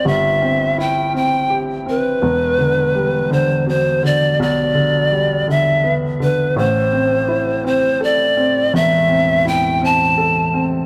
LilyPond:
<<
  \new Staff \with { instrumentName = "Pan flute" } { \time 6/8 \key e \phrygian \tempo 4. = 55 e''4 g''8 g''8 r8 b'8~ | b'4. c''8 c''8 d''8 | d''4. e''8 r8 b'8 | c''4. c''8 d''4 |
e''4 g''8 a''4 r8 | }
  \new Staff \with { instrumentName = "Felt piano" } { \time 6/8 \key e \phrygian <g,, g, c' g'>8 c'8 e'8 c'8 g'8 c'8 | <e,, e,>8 d8 g8 d8 b,8 d8 | b,,8 d8 g8 d8 b8 d8 | <a,, a,>8 c'8 e'8 c'8 a'8 c'8 |
<e,, e,>8 c'8 e'8 c'8 a'8 c'8 | }
>>